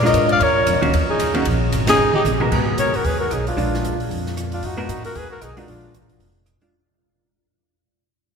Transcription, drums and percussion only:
0.05 snare
0.14 hi-hat pedal, ride
0.29 ride
0.40 ride
0.67 hi-hat pedal, ride
0.82 ride
0.93 ride
1.19 hi-hat pedal, ride
1.34 ride
1.45 ride
1.72 hi-hat pedal, ride
1.87 snare, ride
2.13 high tom
2.25 hi-hat pedal, high tom
2.40 mid tom
2.51 kick, crash
2.78 closed hi-hat
2.94 open hi-hat
3.04 open hi-hat
3.31 cross-stick, closed hi-hat
3.47 open hi-hat
3.58 open hi-hat
3.74 snare
3.85 closed hi-hat
4.00 open hi-hat
4.11 open hi-hat
4.26 snare
4.37 cross-stick, closed hi-hat
4.52 open hi-hat
4.63 open hi-hat
4.89 closed hi-hat
5.04 open hi-hat
5.15 open hi-hat
5.41 cross-stick, closed hi-hat
5.57 open hi-hat
5.68 open hi-hat
5.94 closed hi-hat
6.09 open hi-hat
6.20 open hi-hat
6.46 cross-stick, closed hi-hat
6.61 open hi-hat

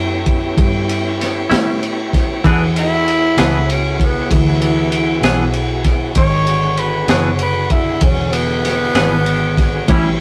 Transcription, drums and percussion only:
0.26 kick, ride
0.58 kick, ride
0.89 ride
1.21 snare, ride
1.51 snare, ride
1.83 ride
2.13 kick, snare, ride
2.44 kick, ride
2.76 ride
3.08 ride
3.38 snare, ride
3.70 ride
4.00 kick, ride
4.31 kick, ride
4.62 ride
4.92 ride
5.23 snare, ride
5.53 ride
5.84 kick, snare, ride
6.15 kick, ride
6.47 ride
6.77 ride
7.08 snare, ride
7.39 ride
7.70 kick, ride
8.01 kick, ride
8.33 ride
8.65 snare, ride
8.95 snare, ride
9.26 ride
9.57 kick, snare, ride
9.88 kick, ride

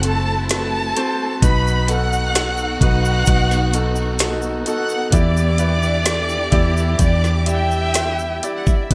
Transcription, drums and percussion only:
0.03 closed hi-hat
0.49 snare, closed hi-hat
0.97 closed hi-hat
1.42 kick, closed hi-hat, shaker
1.67 shaker
1.88 closed hi-hat, shaker
2.13 shaker
2.35 snare, closed hi-hat, shaker
2.57 shaker
2.81 kick, closed hi-hat
3.05 shaker
3.26 kick, closed hi-hat, shaker
3.51 snare, shaker
3.73 closed hi-hat, shaker
3.96 shaker
4.19 snare, closed hi-hat, shaker
4.42 shaker
4.66 closed hi-hat, shaker
4.89 shaker
5.12 kick, closed hi-hat, shaker
5.37 shaker
5.58 closed hi-hat, shaker
5.83 shaker
6.06 snare, closed hi-hat, shaker
6.29 shaker
6.52 kick, closed hi-hat
6.77 shaker
6.99 kick, closed hi-hat, shaker
7.24 snare, shaker
7.46 closed hi-hat, shaker
7.71 shaker
7.94 snare, closed hi-hat, shaker
8.19 shaker
8.43 closed hi-hat, shaker
8.67 kick, shaker
8.91 kick, closed hi-hat

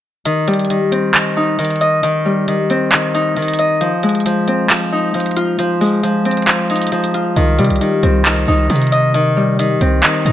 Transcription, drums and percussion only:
0.25 closed hi-hat
0.48 closed hi-hat
0.54 closed hi-hat
0.59 closed hi-hat
0.65 closed hi-hat
0.70 closed hi-hat
0.92 closed hi-hat
1.14 clap, closed hi-hat
1.59 closed hi-hat
1.65 closed hi-hat
1.71 closed hi-hat
1.76 closed hi-hat
1.81 closed hi-hat
2.03 closed hi-hat
2.48 closed hi-hat
2.70 closed hi-hat
2.92 clap, closed hi-hat
3.15 closed hi-hat
3.37 closed hi-hat
3.42 closed hi-hat
3.48 closed hi-hat
3.54 closed hi-hat
3.59 closed hi-hat
3.81 closed hi-hat
4.03 closed hi-hat
4.09 closed hi-hat
4.15 closed hi-hat
4.20 closed hi-hat
4.26 closed hi-hat
4.48 closed hi-hat
4.70 clap, closed hi-hat
5.14 closed hi-hat
5.20 closed hi-hat
5.26 closed hi-hat
5.31 closed hi-hat
5.37 closed hi-hat
5.59 closed hi-hat
5.81 open hi-hat
6.04 closed hi-hat
6.25 closed hi-hat
6.31 closed hi-hat
6.37 closed hi-hat
6.42 closed hi-hat
6.48 clap, closed hi-hat
6.70 closed hi-hat
6.76 closed hi-hat
6.82 closed hi-hat
6.87 closed hi-hat
6.92 closed hi-hat
7.04 closed hi-hat
7.14 closed hi-hat
7.36 closed hi-hat
7.59 closed hi-hat
7.65 closed hi-hat
7.70 closed hi-hat
7.76 closed hi-hat
7.81 closed hi-hat
8.03 closed hi-hat
8.25 clap, closed hi-hat
8.70 closed hi-hat
8.76 closed hi-hat
8.82 closed hi-hat
8.87 closed hi-hat
8.92 closed hi-hat
9.14 closed hi-hat
9.59 closed hi-hat
9.81 closed hi-hat
10.03 clap, closed hi-hat
10.26 closed hi-hat

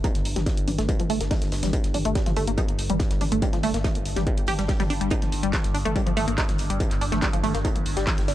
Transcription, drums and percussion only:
0.04 kick, closed hi-hat, mid tom
0.15 snare, closed hi-hat
0.25 closed hi-hat, open hi-hat
0.36 snare, closed hi-hat, mid tom
0.46 kick, snare, closed hi-hat
0.57 closed hi-hat
0.68 closed hi-hat, open hi-hat, mid tom
0.78 snare, closed hi-hat
0.89 kick, closed hi-hat
1.00 closed hi-hat, mid tom
1.10 closed hi-hat, open hi-hat
1.21 snare, closed hi-hat
1.31 kick, snare, closed hi-hat, open hi-hat, mid tom
1.42 snare, closed hi-hat
1.52 snare, closed hi-hat, open hi-hat
1.63 snare, closed hi-hat, mid tom
1.73 kick, closed hi-hat
1.84 snare, closed hi-hat
1.94 closed hi-hat, open hi-hat, mid tom
2.05 closed hi-hat
2.15 kick, snare, closed hi-hat
2.26 snare, closed hi-hat, mid tom
2.36 closed hi-hat, open hi-hat
2.47 closed hi-hat
2.58 kick, closed hi-hat, mid tom
2.68 closed hi-hat
2.79 closed hi-hat, open hi-hat
2.90 closed hi-hat, mid tom
3.00 kick, snare, closed hi-hat
3.10 snare, closed hi-hat
3.21 snare, closed hi-hat, open hi-hat, mid tom
3.32 closed hi-hat
3.42 kick, closed hi-hat
3.53 snare, closed hi-hat, mid tom
3.63 closed hi-hat, open hi-hat
3.74 snare, closed hi-hat
3.84 kick, snare, closed hi-hat, mid tom
3.95 closed hi-hat
4.05 closed hi-hat, open hi-hat
4.16 snare, closed hi-hat, mid tom
4.27 kick, closed hi-hat
4.38 closed hi-hat
4.47 closed hi-hat, open hi-hat, mid tom
4.59 snare, closed hi-hat
4.68 kick, snare, closed hi-hat, open hi-hat
4.79 snare, closed hi-hat, mid tom
4.90 closed hi-hat, open hi-hat
5.01 closed hi-hat
5.10 kick, closed hi-hat
5.22 snare, closed hi-hat, mid tom
5.32 closed hi-hat, open hi-hat
5.43 closed hi-hat
5.53 kick, snare, clap, closed hi-hat, mid tom
5.64 snare, closed hi-hat
5.75 closed hi-hat, open hi-hat
5.86 closed hi-hat, mid tom
5.96 kick, closed hi-hat
6.07 closed hi-hat
6.17 closed hi-hat, open hi-hat, mid tom
6.28 closed hi-hat
6.38 kick, snare, clap, closed hi-hat
6.49 snare, closed hi-hat, mid tom
6.58 snare, closed hi-hat, open hi-hat
6.70 closed hi-hat
6.80 kick, closed hi-hat, mid tom
6.91 snare, clap, closed hi-hat
7.01 closed hi-hat, open hi-hat
7.12 snare, closed hi-hat, mid tom
7.22 kick, snare, clap, closed hi-hat
7.33 closed hi-hat
7.44 closed hi-hat, open hi-hat, mid tom
7.54 snare, closed hi-hat
7.65 kick, closed hi-hat
7.76 closed hi-hat, mid tom
7.86 closed hi-hat, open hi-hat
7.97 snare, closed hi-hat
8.07 kick, snare, clap, closed hi-hat, open hi-hat, mid tom
8.18 snare, closed hi-hat
8.28 snare, closed hi-hat, open hi-hat

